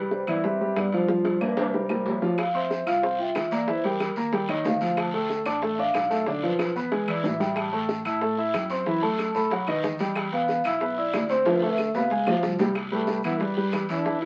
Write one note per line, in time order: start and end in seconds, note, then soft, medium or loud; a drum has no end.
0.00 0.22 C2 medium
0.00 0.22 G3 medium
0.00 0.22 G4 medium
0.00 0.22 B4 medium
0.11 0.27 G3 medium
0.11 0.28 C5 medium
0.11 high bongo medium
0.27 0.73 G2 medium
0.27 0.41 E3 medium
0.27 0.43 B3 medium
0.27 0.41 E4 medium
0.27 0.43 D5 medium
0.27 0.41 E5 medium
0.27 high timbale medium
0.27 claves medium
0.44 0.57 G3 medium
0.44 0.74 C4 medium
0.44 0.57 G4 medium
0.44 0.58 B4 medium
0.44 0.78 E5 loud
0.44 high bongo medium
0.61 0.87 G3 medium
0.61 0.87 G4 medium
0.61 0.87 B4 medium
0.76 1.51 G2 medium
0.76 0.91 B3 medium
0.76 0.92 D5 medium
0.76 high bongo medium
0.76 low bongo medium
0.76 high timbale medium
0.76 claves medium
0.92 1.06 F3 medium
0.92 1.38 G3 medium
0.92 1.06 F4 medium
0.92 1.43 C5 medium
0.92 1.06 F5 medium
0.92 high timbale medium
1.08 1.35 F3 medium
1.08 1.36 F4 medium
1.08 1.36 F5 medium
1.08 high bongo medium
1.25 high bongo loud
1.25 high timbale medium
1.41 1.49 G3 medium
1.41 1.67 A#3 medium
1.41 1.68 A#4 medium
1.41 1.49 A#4 medium
1.41 1.68 D5 medium
1.41 high timbale medium
1.41 claves medium
1.57 2.02 C2 medium
1.57 2.18 G3 medium
1.57 2.19 C5 medium
1.57 high bongo medium
1.57 high timbale loud
1.74 1.87 G3 medium
1.74 1.87 G4 medium
1.74 1.87 A#4 medium
1.74 low bongo loud
1.89 2.16 G3 medium
1.89 2.16 G4 medium
1.89 2.16 A#4 medium
1.89 2.07 A#4 medium
1.89 low bongo medium
1.89 low timbale medium
1.89 claves medium
2.06 2.81 F2 medium
2.06 2.40 C#5 medium
2.06 low timbale medium
2.22 2.35 F3 medium
2.22 2.35 F4 medium
2.22 2.35 F5 medium
2.22 low bongo medium
2.22 low timbale medium
2.38 2.54 F5 medium
2.38 high bongo medium
2.38 high timbale medium
2.38 long guiro medium
2.38 claves medium
2.54 2.81 C4 medium
2.54 2.81 C5 medium
2.54 2.88 E5 medium
2.54 2.81 C6 medium
2.54 high timbale medium
2.71 high bongo medium
2.71 short guiro medium
2.86 3.32 C2 medium
2.86 3.00 F4 medium
2.86 3.00 F5 medium
2.86 3.17 F5 medium
2.86 3.00 F6 medium
2.86 high timbale medium
2.86 short guiro medium
2.86 claves medium
3.03 3.16 C4 medium
3.03 3.16 C5 medium
3.03 3.17 C6 medium
3.03 high bongo medium
3.03 long guiro medium
3.19 3.46 F4 medium
3.19 3.53 E5 loud
3.19 3.46 G5 medium
3.35 4.11 E2 medium
3.35 high bongo medium
3.35 low bongo medium
3.35 high timbale medium
3.35 short guiro medium
3.35 claves medium
3.51 3.65 A#3 medium
3.51 3.65 A#4 medium
3.51 3.69 D5 medium
3.51 3.65 A#5 medium
3.51 high timbale medium
3.51 short guiro medium
3.67 3.81 E3 medium
3.67 3.81 E4 medium
3.67 3.76 C5 medium
3.67 3.81 E5 medium
3.67 high bongo medium
3.67 long guiro medium
3.84 4.11 G3 medium
3.84 4.11 G4 medium
3.84 4.45 A#4 medium
3.84 4.11 G5 medium
3.84 high bongo soft
3.84 high timbale medium
4.00 high bongo medium
4.00 high timbale medium
4.00 short guiro medium
4.00 claves medium
4.16 4.62 D#2 medium
4.16 4.30 A#3 medium
4.16 4.30 A#4 medium
4.16 4.30 A#5 medium
4.16 short guiro medium
4.32 4.46 G3 medium
4.32 4.46 G4 medium
4.32 4.46 G5 medium
4.32 high bongo medium
4.32 high timbale medium
4.32 long guiro medium
4.49 4.75 D#3 medium
4.49 4.76 D#4 medium
4.49 4.66 C#5 medium
4.49 4.76 D#5 medium
4.49 high bongo soft
4.49 high timbale medium
4.49 claves medium
4.65 5.40 D2 loud
4.65 4.96 F5 loud
4.65 high bongo medium
4.65 low bongo medium
4.65 low timbale medium
4.65 short guiro medium
4.81 5.08 F3 medium
4.81 5.08 F4 medium
4.81 5.08 F5 medium
4.81 high bongo soft
4.81 high timbale medium
4.81 short guiro medium
4.97 5.15 A5 medium
4.97 high bongo medium
4.97 high timbale medium
4.97 long guiro medium
4.97 claves medium
5.14 5.40 A3 medium
5.14 5.40 A4 medium
5.14 5.48 G5 loud
5.14 5.40 A5 medium
5.14 high timbale medium
5.30 high bongo medium
5.30 short guiro medium
5.46 5.91 A1 medium
5.46 5.59 D4 medium
5.46 5.59 D5 medium
5.46 5.73 A5 loud
5.46 5.60 D6 medium
5.46 high timbale medium
5.46 short guiro medium
5.46 claves medium
5.62 5.76 A3 medium
5.62 5.76 A4 medium
5.62 5.76 A5 medium
5.62 high bongo medium
5.62 long guiro medium
5.72 5.79 E5 medium
5.79 6.05 D4 medium
5.79 6.05 D5 medium
5.79 6.12 F5 loud
5.79 6.06 D6 medium
5.94 6.70 B1 loud
5.94 high bongo medium
5.94 low bongo medium
5.94 high timbale medium
5.94 short guiro medium
5.94 claves medium
6.10 6.24 A3 medium
6.10 6.24 A4 medium
6.10 6.28 E5 medium
6.10 6.24 A5 medium
6.10 high timbale medium
6.10 short guiro medium
6.26 6.40 D3 medium
6.26 6.40 D4 medium
6.26 6.41 D5 medium
6.26 6.44 D5 loud
6.26 high bongo medium
6.26 long guiro medium
6.43 6.70 F3 medium
6.43 6.70 F4 medium
6.43 7.04 B4 medium
6.43 6.70 F5 medium
6.43 high bongo soft
6.43 high timbale medium
6.59 high bongo medium
6.59 high timbale medium
6.59 short guiro medium
6.59 claves medium
6.75 7.21 E2 medium
6.75 6.89 B3 medium
6.75 6.89 B4 medium
6.75 6.89 B5 medium
6.75 short guiro medium
6.92 7.05 G#3 medium
6.92 7.05 G#4 medium
6.92 7.05 G#5 medium
6.92 high bongo medium
6.92 high timbale medium
6.92 long guiro medium
7.08 7.34 E3 medium
7.08 7.35 E4 medium
7.08 7.25 D5 medium
7.08 7.35 E5 medium
7.08 high timbale loud
7.08 claves medium
7.24 8.00 A1 medium
7.24 7.58 E5 loud
7.24 low bongo loud
7.24 low timbale medium
7.24 short guiro medium
7.40 7.67 G3 medium
7.40 7.67 G4 medium
7.40 7.67 G5 medium
7.40 low bongo loud
7.40 high timbale medium
7.40 short guiro medium
7.56 7.74 A5 loud
7.56 high bongo medium
7.56 high timbale medium
7.56 long guiro medium
7.56 claves medium
7.72 7.99 A3 medium
7.72 8.00 A4 medium
7.72 8.03 G5 medium
7.72 8.00 A5 medium
7.72 high timbale medium
7.89 high bongo medium
7.89 short guiro medium
8.05 8.50 A2 medium
8.05 8.19 E4 medium
8.05 8.19 E5 medium
8.05 8.39 A5 medium
8.05 8.19 E6 medium
8.05 high timbale medium
8.05 short guiro medium
8.05 claves medium
8.21 8.35 A3 medium
8.21 8.35 A4 medium
8.21 8.35 A5 medium
8.21 high bongo medium
8.21 long guiro medium
8.38 8.64 E4 medium
8.38 8.65 E5 medium
8.38 8.46 E5 medium
8.38 8.65 E6 medium
8.54 9.29 F#2 loud
8.54 8.85 G5 medium
8.54 high bongo medium
8.54 low bongo medium
8.54 high timbale medium
8.54 short guiro medium
8.54 claves medium
8.70 8.83 C4 medium
8.70 8.84 C5 medium
8.70 8.84 C6 medium
8.70 high timbale medium
8.70 short guiro medium
8.86 8.99 E3 medium
8.86 9.00 E4 medium
8.86 9.00 E5 medium
8.86 8.94 B5 loud
8.86 high bongo medium
8.86 long guiro medium
9.02 9.29 A3 medium
9.02 9.29 A4 medium
9.02 9.36 A5 loud
9.02 9.29 A5 medium
9.02 high bongo soft
9.02 high timbale medium
9.19 high bongo medium
9.19 high timbale medium
9.19 short guiro medium
9.19 claves medium
9.34 9.80 B1 medium
9.34 9.48 A3 medium
9.34 9.49 A4 medium
9.34 9.49 A5 medium
9.34 9.65 B5 loud
9.34 short guiro medium
9.50 9.65 F#3 medium
9.50 9.65 F#4 medium
9.50 9.65 F#5 medium
9.50 high bongo medium
9.50 high timbale medium
9.50 long guiro medium
9.67 9.94 D#3 medium
9.67 9.94 D#4 medium
9.67 9.75 B4 medium
9.67 9.95 D#5 medium
9.67 high bongo soft
9.67 high timbale medium
9.67 claves medium
9.83 10.59 E2 medium
9.83 10.17 D#5 medium
9.83 high bongo medium
9.83 low bongo medium
9.83 short guiro medium
9.99 10.27 G3 medium
9.99 10.27 G4 medium
9.99 10.27 G5 medium
9.99 high bongo soft
9.99 high timbale medium
9.99 short guiro medium
10.15 10.23 G5 loud
10.15 high bongo medium
10.15 high timbale loud
10.15 long guiro medium
10.15 claves medium
10.33 10.59 B3 medium
10.33 10.59 B4 medium
10.33 10.66 F5 loud
10.33 10.59 B5 medium
10.33 high timbale medium
10.48 high bongo medium
10.48 short guiro medium
10.64 11.10 B1 medium
10.64 10.78 E4 medium
10.64 10.98 E5 loud
10.64 10.78 E5 medium
10.64 10.79 E6 medium
10.64 high timbale medium
10.64 short guiro medium
10.64 claves medium
10.80 10.95 B3 medium
10.80 10.95 B4 medium
10.80 10.95 B5 medium
10.80 high bongo medium
10.80 long guiro medium
10.97 11.24 E4 medium
10.97 11.28 D5 medium
10.97 11.24 E5 medium
10.97 11.24 E6 medium
11.13 11.89 D2 loud
11.13 high bongo medium
11.13 low bongo medium
11.13 high timbale medium
11.13 low timbale medium
11.13 short guiro medium
11.13 claves medium
11.29 11.43 C4 medium
11.29 11.60 C5 loud
11.29 11.43 C5 medium
11.29 11.43 C6 medium
11.29 high timbale medium
11.29 short guiro medium
11.45 11.59 F3 medium
11.45 11.59 F4 medium
11.45 11.60 F5 medium
11.45 high bongo medium
11.45 high timbale medium
11.45 long guiro medium
11.62 11.89 A3 medium
11.62 11.89 A4 medium
11.62 11.93 E5 medium
11.62 11.89 A5 medium
11.62 high bongo soft
11.62 high timbale medium
11.78 high bongo medium
11.78 short guiro medium
11.78 claves medium
11.94 12.40 C#2 medium
11.94 12.08 B3 medium
11.94 12.08 B4 medium
11.94 12.40 F5 medium
11.94 12.08 B5 medium
11.94 low timbale medium
11.94 short guiro medium
12.10 12.24 G#3 medium
12.10 12.25 G#4 medium
12.10 12.25 G#5 medium
12.10 high bongo medium
12.10 long guiro medium
12.27 12.54 F3 medium
12.27 12.54 F4 medium
12.27 12.54 F5 medium
12.27 high bongo medium
12.27 low timbale loud
12.27 claves medium
12.43 13.19 C2 medium
12.43 high bongo medium
12.43 short guiro medium
12.59 12.73 G3 medium
12.59 12.73 G4 medium
12.59 12.73 G5 medium
12.59 low bongo medium
12.59 low timbale loud
12.59 short guiro medium
12.75 high bongo medium
12.75 high timbale loud
12.75 long guiro medium
12.75 claves medium
12.92 13.18 G3 medium
12.92 13.23 A3 medium
12.92 13.19 G4 medium
12.92 13.19 B4 medium
12.92 high timbale medium
13.07 high bongo medium
13.07 short guiro medium
13.23 13.70 G2 medium
13.23 13.38 E3 medium
13.23 13.43 B3 medium
13.23 13.38 E4 medium
13.23 13.38 E5 medium
13.23 high timbale medium
13.23 short guiro medium
13.23 claves medium
13.40 13.54 G3 medium
13.40 13.57 G3 medium
13.40 13.54 G4 medium
13.40 13.55 B4 medium
13.40 high bongo medium
13.40 long guiro medium
13.57 13.84 G3 medium
13.57 13.84 G4 medium
13.57 13.84 B4 medium
13.72 14.25 E2 medium
13.72 high bongo medium
13.72 low bongo medium
13.72 high timbale medium
13.72 short guiro medium
13.72 claves medium
13.89 14.03 E3 medium
13.89 14.20 D4 medium
13.89 14.03 E4 medium
13.89 14.03 E5 medium
13.89 high timbale medium
13.89 short guiro medium
14.05 14.25 E3 medium
14.05 14.25 E4 medium
14.05 14.25 E5 medium
14.05 high bongo medium
14.05 long guiro medium
14.22 14.25 E4 loud
14.22 high bongo soft
14.22 high timbale medium